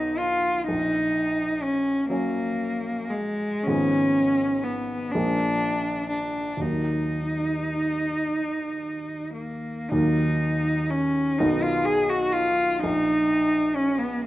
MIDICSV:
0, 0, Header, 1, 3, 480
1, 0, Start_track
1, 0, Key_signature, -6, "minor"
1, 0, Tempo, 955414
1, 346, Time_signature, 6, 3, 24, 8
1, 1305, Tempo, 1067616
1, 1785, Tempo, 988468
1, 3225, Tempo, 1032702
1, 3705, Tempo, 1084991
1, 4185, Tempo, 1174168
1, 4665, Tempo, 1013514
1, 5145, Tempo, 949367
1, 6829, End_track
2, 0, Start_track
2, 0, Title_t, "Cello"
2, 0, Program_c, 0, 42
2, 0, Note_on_c, 0, 63, 61
2, 93, Note_on_c, 0, 65, 59
2, 100, Note_off_c, 0, 63, 0
2, 331, Note_off_c, 0, 65, 0
2, 334, Note_on_c, 0, 63, 66
2, 817, Note_on_c, 0, 61, 63
2, 824, Note_off_c, 0, 63, 0
2, 1046, Note_off_c, 0, 61, 0
2, 1049, Note_on_c, 0, 58, 71
2, 1530, Note_on_c, 0, 56, 61
2, 1537, Note_off_c, 0, 58, 0
2, 1771, Note_on_c, 0, 61, 76
2, 1778, Note_off_c, 0, 56, 0
2, 2258, Note_on_c, 0, 59, 58
2, 2265, Note_off_c, 0, 61, 0
2, 2489, Note_on_c, 0, 62, 67
2, 2496, Note_off_c, 0, 59, 0
2, 2959, Note_off_c, 0, 62, 0
2, 2962, Note_on_c, 0, 62, 51
2, 3211, Note_on_c, 0, 63, 55
2, 3219, Note_off_c, 0, 62, 0
2, 4420, Note_off_c, 0, 63, 0
2, 4422, Note_on_c, 0, 58, 50
2, 4653, Note_on_c, 0, 63, 70
2, 4659, Note_off_c, 0, 58, 0
2, 5128, Note_on_c, 0, 61, 65
2, 5136, Note_off_c, 0, 63, 0
2, 5374, Note_on_c, 0, 63, 61
2, 5382, Note_off_c, 0, 61, 0
2, 5493, Note_on_c, 0, 65, 63
2, 5500, Note_off_c, 0, 63, 0
2, 5609, Note_on_c, 0, 68, 69
2, 5616, Note_off_c, 0, 65, 0
2, 5729, Note_on_c, 0, 66, 70
2, 5736, Note_off_c, 0, 68, 0
2, 5848, Note_on_c, 0, 65, 75
2, 5856, Note_off_c, 0, 66, 0
2, 6084, Note_on_c, 0, 63, 81
2, 6092, Note_off_c, 0, 65, 0
2, 6572, Note_on_c, 0, 61, 71
2, 6580, Note_off_c, 0, 63, 0
2, 6687, Note_on_c, 0, 59, 64
2, 6694, Note_off_c, 0, 61, 0
2, 6810, Note_off_c, 0, 59, 0
2, 6813, Note_on_c, 0, 58, 80
2, 6829, Note_off_c, 0, 58, 0
2, 6829, End_track
3, 0, Start_track
3, 0, Title_t, "Grand piano"
3, 0, Program_c, 1, 0
3, 0, Control_c, 1, 64, 127
3, 0, Note_on_c, 1, 35, 44
3, 0, Note_on_c, 1, 54, 30
3, 0, Note_on_c, 1, 59, 30
3, 0, Note_on_c, 1, 63, 30
3, 326, Note_off_c, 1, 35, 0
3, 326, Note_off_c, 1, 54, 0
3, 327, Note_off_c, 1, 59, 0
3, 330, Note_off_c, 1, 63, 0
3, 344, Note_on_c, 1, 34, 45
3, 354, Control_c, 1, 64, 0
3, 443, Control_c, 1, 64, 127
3, 1038, Note_off_c, 1, 34, 0
3, 1055, Note_on_c, 1, 54, 37
3, 1061, Note_on_c, 1, 61, 43
3, 1765, Note_off_c, 1, 54, 0
3, 1767, Note_off_c, 1, 61, 0
3, 1788, Note_on_c, 1, 32, 48
3, 1789, Note_on_c, 1, 53, 34
3, 1792, Note_on_c, 1, 56, 35
3, 1793, Control_c, 1, 64, 0
3, 1793, Note_on_c, 1, 59, 35
3, 1890, Control_c, 1, 64, 127
3, 2488, Note_off_c, 1, 32, 0
3, 2488, Note_off_c, 1, 53, 0
3, 2490, Note_off_c, 1, 56, 0
3, 2490, Note_off_c, 1, 59, 0
3, 2506, Note_on_c, 1, 34, 47
3, 2506, Note_on_c, 1, 53, 36
3, 2509, Note_on_c, 1, 56, 36
3, 2509, Note_on_c, 1, 58, 34
3, 2513, Control_c, 1, 64, 0
3, 2597, Control_c, 1, 64, 127
3, 3195, Note_on_c, 1, 39, 37
3, 3200, Note_on_c, 1, 51, 26
3, 3204, Note_off_c, 1, 34, 0
3, 3204, Note_off_c, 1, 53, 0
3, 3205, Note_off_c, 1, 56, 0
3, 3205, Note_off_c, 1, 58, 0
3, 3207, Note_on_c, 1, 54, 28
3, 3214, Note_on_c, 1, 58, 26
3, 3232, Control_c, 1, 64, 0
3, 3298, Control_c, 1, 64, 127
3, 4635, Note_off_c, 1, 39, 0
3, 4637, Note_off_c, 1, 51, 0
3, 4640, Note_off_c, 1, 54, 0
3, 4643, Note_off_c, 1, 58, 0
3, 4661, Note_on_c, 1, 51, 33
3, 4663, Note_on_c, 1, 39, 48
3, 4664, Note_on_c, 1, 54, 32
3, 4667, Note_on_c, 1, 58, 35
3, 4673, Control_c, 1, 64, 0
3, 4767, Control_c, 1, 64, 127
3, 5361, Note_off_c, 1, 51, 0
3, 5362, Note_off_c, 1, 39, 0
3, 5363, Note_off_c, 1, 54, 0
3, 5365, Note_off_c, 1, 58, 0
3, 5381, Note_on_c, 1, 51, 39
3, 5382, Note_on_c, 1, 35, 53
3, 5388, Note_on_c, 1, 54, 39
3, 5389, Note_on_c, 1, 59, 38
3, 5390, Control_c, 1, 64, 0
3, 5462, Control_c, 1, 64, 127
3, 6085, Note_off_c, 1, 35, 0
3, 6085, Note_off_c, 1, 51, 0
3, 6088, Note_off_c, 1, 54, 0
3, 6089, Note_off_c, 1, 59, 0
3, 6107, Note_on_c, 1, 34, 51
3, 6113, Control_c, 1, 64, 0
3, 6199, Control_c, 1, 64, 127
3, 6804, Note_off_c, 1, 34, 0
3, 6829, End_track
0, 0, End_of_file